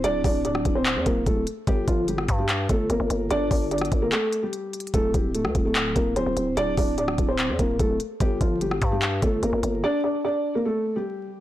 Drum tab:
HH |x-----o-----x-----x-----x-----x-----x-----x-----|x-----x-----x-----x-----x-----x-----x-----x-----|x-----o-----x-x-x-x-----x-----x-----x-----x-x-x-|x-----x-----x-----x-----x-----x-----x-----x-----|
CP |------------------------x-----------------------|------------------------x-----------------------|------------------------x-----------------------|------------------------x-----------------------|
SD |---------------r--------------------------------|---------------r--------------------------------|---------------r--------------------------------|---------------r--------------------------------|
BD |------o-----------o-----------o-----o-----------|o-----o-----------o-----------o-----------------|------o-----------o-----------------------------|o-----o-----------o-----------o-----------------|

HH |x-----o-----x-----x-----x-----x-----x-----x-----|x-----x-----x-----x-----x-----x-----x-----x-----|------------------------------------------------|
CP |------------------------x-----------------------|------------------------x-----------------------|------------------------------------------------|
SD |---------------r--------------------------------|---------------r--------------------------------|------------------------------------------------|
BD |------o-----------o-----------o-----o-----------|o-----o-----------o-----------o-----------------|------------------------------------------------|